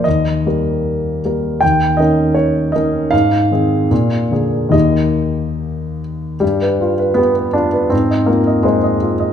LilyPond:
\new Staff \with { instrumentName = "Grand piano" } { \time 2/4 \key ees \major \tempo 4 = 78 << { ees''2 | g''8 ees''8 des''8 ees''8 | f''2 | ees''4. r8 |
g4 b8 d'8 | c'8 bes8 aes4 | } \\ { ees,8 <g bes bes'>4 <g bes bes'>8 | ees,8 <ees des' bes'>4 <ees des' bes'>8 | aes,8 <ees c' aes'>8 bes,8 <d bes aes'>8 | <ees, ees bes g'>2 |
g,16 b'16 f'16 b'16 g'16 b'16 f'16 b'16 | aes,16 ees''16 f'16 ees''16 c''16 ees''16 f'16 ees''16 | } >> }